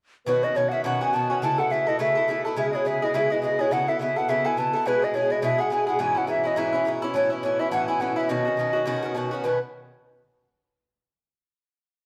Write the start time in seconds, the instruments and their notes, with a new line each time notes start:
0.26 bouzouki B2 D#3 C#4 F#4, accordion B2 B3, flute B4
0.43 bouzouki D#3 C#4 F#4, flute D#5
0.55 bouzouki B2 D#3 C#4 F#4, flute C#5
0.69 bouzouki F#4, flute F#5
0.73 bouzouki D#3 C#4, flute E5
0.84 bouzouki B2 D#3 C#4 F#4, flute F#5
1.01 bouzouki D#3 C#4 F#4, flute G#5
1.13 bouzouki B2 D#3 C#4 F#4, flute A5
1.30 bouzouki D#3 C#4 F#4, flute G#5
1.42 bouzouki C#3 A3 E4 A4, flute A5
1.58 bouzouki A3 E4 A4, flute F#5
1.70 bouzouki C#3 A3 E4 A4, flute E5
1.87 bouzouki A3 E4 A4, flute D#5
1.99 bouzouki C#3 A3 E4 A4, flute E5
2.15 bouzouki A3 E4 A4
2.28 bouzouki C#3 A3 E4 A4
2.45 bouzouki A3 E4 A4
2.56 bouzouki C#3 G#3 E4 G#4, flute E5
2.70 bouzouki G#4, flute D#5
2.75 bouzouki G#3 E4, flute C#5
2.85 bouzouki C#3 G#3 E4 G#4, flute E5
3.02 bouzouki G#3 E4 G#4, flute D#5
3.14 bouzouki C#3 G#3 E4 G#4, flute E5
3.30 bouzouki G#3 E4 G#4, flute D#5
3.42 bouzouki C#3 G#3 E4 G#4, flute D#5
3.59 bouzouki G#3 E4 G#4, flute C#5
3.71 bouzouki C#3 B3 E4 A4, flute F#5
3.88 bouzouki B3 E4 A4, flute E5
3.99 bouzouki C#3 B3 E4 A4, flute E5
4.16 bouzouki B3 E4 A4, flute F#5
4.29 bouzouki C#3 B3 E4 A4, flute E5
4.45 bouzouki B3 E4 A4, flute G#5
4.57 bouzouki C#3 B3 E4 A4, flute A5
4.73 bouzouki B3 E4 A4
4.86 bouzouki B2 G#3 E4 G#4, accordion B2 B3, flute B4
5.02 bouzouki G#3 E4 G#4, flute D#5
5.14 bouzouki B2 G#3 E4 G#4, flute C#5
5.30 bouzouki G#3 E4 G#4, flute D#5
5.42 bouzouki B2 G#3 E4 G#4, flute E5
5.58 bouzouki G#3 E4 G#4, flute F#5
5.70 bouzouki B2 G#3 E4 G#4, flute G#5
5.87 bouzouki G#3 E4 G#4, flute F#5
5.99 bouzouki G#2 E3 C#4 E4, flute G#5
6.15 bouzouki E3 C#4 E4, flute F#5
6.27 bouzouki G#2 E3 C#4 E4, flute E5
6.44 bouzouki E3 C#4 E4, flute D#5
6.56 bouzouki G#2 E3 C#4 E4, flute E5
6.73 bouzouki E3 C#4 E4
6.85 bouzouki G#2 E3 C#4 E4
7.02 bouzouki E3 C#4 E4
7.14 bouzouki A2 E3 C#4 E4, flute C#5
7.30 bouzouki E3 C#4 E4
7.43 bouzouki A2 E3 C#4 E4, flute C#5
7.59 bouzouki E3 C#4 E4, flute E5
7.71 bouzouki A2 E3 C#4 E4, flute F#5
7.88 bouzouki E3 C#4 E4, flute G#5
8.00 bouzouki A2 E3 C#4 E4, flute F#5
8.16 bouzouki E3 C#4 E4, flute E5
8.29 bouzouki B2 D#3 C#4 F#4, flute D#5
8.45 bouzouki D#3 C#4 F#4
8.57 bouzouki B2 D#3 C#4 F#4
8.73 bouzouki D#3 C#4 F#4
8.86 bouzouki B2 D#3 C#4 F#4
9.03 bouzouki D#3 C#4 F#4
9.15 bouzouki B2 D#3 C#4 F#4
9.31 bouzouki D#3 C#4 F#4
9.44 bouzouki B2 D#3 C#4 F#4, flute B4